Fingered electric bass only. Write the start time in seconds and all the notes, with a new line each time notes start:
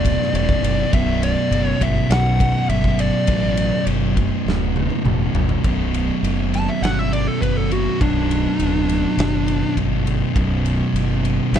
Already playing: D1
0.33 E1
0.62 F#1
0.93 B0
1.51 F#1
1.81 G1
2.09 B1
2.69 G1
3.28 A1
3.86 F#1
4.45 D1
5.05 E1
5.34 F#1
5.64 B0
6.22 F#1
6.81 G1
7.42 F#1
8.00 B0
8.59 D1
9.17 F#1
9.77 G1
10.35 B0
10.93 F#1
11.52 G1